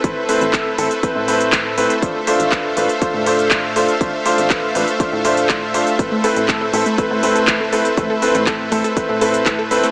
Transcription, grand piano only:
\new Staff \with { instrumentName = "Grand piano" } { \time 4/4 \key a \minor \tempo 4 = 121 <a c' e' b'>8 <a c' e' b'>8 <a c' e' a'>8 <a c' e' a'>8 <a c' e' b'>8 <a c' e' b'>8 <a c' e'>8 <a c' e' b'>8 | <a d' f' c''>8 <a d' f' c''>8 <a d' f' b'>8 <a d' f' b'>8 <a d' f' c''>8 <a d' f' c''>8 <a d' f' c''>8 <a d' f' c''>8 | <a d' f' c''>8 <a d' f' c''>8 <a d' f' b'>8 <a d' f' b'>8 <a d' f' c''>8 <a d' f' c''>8 <a d' f' c''>8 <a d' f' c''>8 | <a c' e' b'>8 <a c' e' b'>8 <a c' e' a'>8 <a c' e' a'>8 <a c' e' b'>8 <a c' e' b'>8 a8 <a c' e' b'>8 |
<a c' e' b'>8 <a c' e' b'>8 <a c' e' a'>8 <a c' e' a'>8 <a c' e' b'>8 <a c' e' b'>8 <a c' e' b'>8 <a c' e' b'>8 | }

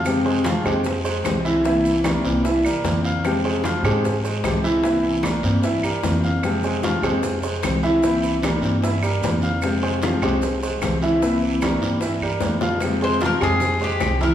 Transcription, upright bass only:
\new Staff \with { instrumentName = "Upright bass" } { \clef bass \time 4/4 \key f \minor \tempo 4 = 150 f,4. f,4. c,4~ | c,4. c,4 e,8 f,4~ | f,4. aes,4. c,4~ | c,4. g,4 g,8 f,4~ |
f,4. f,4. c,4~ | c,4. g,4. f,4~ | f,4. c,4. c,4~ | c,4. g,4 g,8 f,4~ |
f,4. f,4. c,4 | }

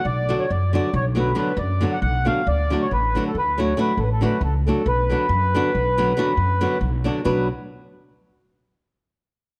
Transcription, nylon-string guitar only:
\new Staff \with { instrumentName = "Nylon-string guitar" } { \time 11/8 \key b \minor \tempo 4 = 138 r8 <d fis b d' fis'>8 r8 <d fis b d' fis'>8 r8 <d fis b d' fis'>8 <d fis b d' fis'>8 r8 <d fis b d' fis'>8 r8 <d fis b d' fis'>8 | r8 <d fis a d' fis'>8 r8 <d fis a d' fis'>8 r8 <d fis a d' fis'>8 <d fis a d' fis'>8 r8 <d fis a d' fis'>8 r8 <d fis a d' fis'>8 | r8 <d fis b d' fis'>8 r8 <d fis b d' fis'>8 r8 <d fis b d' fis'>8 <d fis b d' fis'>8 r8 <d fis b d' fis'>8 r8 <d fis b d' fis'>8 | <fis b d' fis'>8 r1 r4 | }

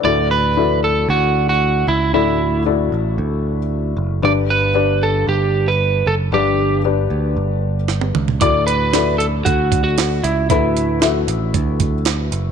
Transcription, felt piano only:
<<
  \new Staff \with { instrumentName = "Felt piano" } { \time 4/4 \key d \major \tempo 4 = 115 << { b'16 r2. r8. | r1 | r1 | r1 |
r1 | r1 | } \\ { <e' fis' a' d''>4 <e' fis' a' d''>4.~ <e' fis' a' d''>16 r4 r16 | <e' fis' a' d''>4 <e' fis' a' d''>4.~ <e' fis' a' d''>16 r4 r16 | <d' g' b' d''>4 <d' g' b' d''>4.~ <d' g' b' d''>16 r4 r16 | <d' g' b' d''>4 <d' g' b' d''>4.~ <d' g' b' d''>16 r4 r16 |
<e' fis' a' d''>4 <e' fis' a' d''>4.~ <e' fis' a' d''>16 r4 r16 | <e' fis' a' b'>4 <e' fis' a' e''>4.~ <e' fis' a' e''>16 r4 r16 | } >> }
  \new Staff \with { instrumentName = "Felt piano" } { \clef bass \time 4/4 \key d \major a,4. r2 r8 | a,4. r2 r8 | <g, d>4. r2 r8 | <g, d>4. r2 r8 |
a,4. r2 r8 | a,4. r2 r8 | }
>>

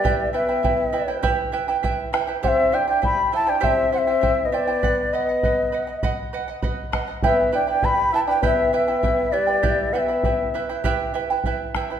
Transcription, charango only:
\new Staff \with { instrumentName = "Charango" } { \time 4/4 \key e \minor \tempo 4 = 100 <e' g' b' e'' g''>8 <e' b' e'' g''>16 <e' b' g''>16 <e' b' e'' g''>8 <e' b' e'' g''>16 <e' b' g''>16 <e' g' b' e'' g''>8 <e' b' e'' g''>16 <e' b' g''>16 <e' b' e'' g''>8 <e' b' e'' g''>16 <e' b' g''>16 | <e' g' c'' e'' g''>8 <e' c'' e'' g''>16 <e' c'' g''>16 <e' c'' e'' g''>8 <e' c'' e'' g''>16 <e' c'' g''>16 <e' g' c'' e'' g''>8 <e' c'' e'' g''>16 <e' c'' g''>16 <e' c'' e'' g''>8 <e' c'' e'' g''>16 <e' c'' g''>16 | <b' fis''>8 <b' dis'' fis''>16 <dis'' fis''>16 <b' dis'' fis''>8 <b' dis'' fis''>16 <dis'' fis''>16 <b' dis'' fis''>8 <b' dis'' fis''>16 <dis'' fis''>16 <b' dis'' fis''>8 <b' dis'' fis''>16 <dis'' fis''>16 | <e' g' b' e'' g''>8 <e' b' e'' g''>16 <e' b' g''>16 <e' b' e'' g''>8 <e' b' e'' g''>16 <e' b' g''>16 <e' g' b' e'' g''>8 <e' b' e'' g''>16 <e' b' g''>16 <e' b' e'' g''>8 <e' b' e'' g''>16 <e' b' g''>16 |
<e' g' b' e'' g''>8 <e' b' e'' g''>16 <e' b' g''>16 <e' b' e'' g''>8 <e' b' e'' g''>16 <e' b' g''>16 <e' g' b' e'' g''>8 <e' b' e'' g''>16 <e' b' g''>16 <e' b' e'' g''>8 <e' b' e'' g''>16 <e' b' g''>16 | }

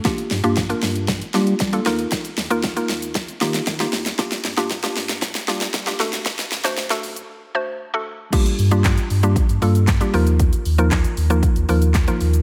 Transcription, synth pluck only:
\new Staff \with { instrumentName = "Synth pluck" } { \time 4/4 \key g \minor \tempo 4 = 116 <bes d' f' g'>8 r16 <bes d' f' g'>16 r16 <bes d' f' bes'>4 r16 <bes d' f' g'>8 r16 <bes d' f' a'>16 <bes ees' f' bes'>8~ | <bes ees' f' bes'>8 r16 <bes ees' f' bes'>16 r16 <bes ees' f' bes'>4 r16 <bes ees' f' g'>8 r16 <bes ees' f' g'>8 r16 | <bes d' f' g'>8 r16 <bes d' f' g'>16 r16 <bes d' f' g'>4 r16 <bes d' f' g'>8 r16 <bes d' f' g'>16 <a d' fis' a'>8~ | <a d' fis' a'>8 r16 <a d' fis' c''>16 r16 <a d' fis' a'>4 r16 <a d' fis' c''>8 r16 <a d' fis' a'>8 r16 |
<g bes d' f' g'>8 r16 <g bes d' f' g'>8. r16 <g bes d' f' g'>8 r16 <g bes d' f' a'>8 r16 <g bes d' f' g'>16 <f bes ees' f' bes'>8~ | <f bes ees' f' bes'>8 r16 <f bes ees' f' bes'>8. r16 <f bes ees' f' bes'>8 r16 <f bes ees' f' bes'>8 r16 <f bes ees' f' bes'>8 r16 | }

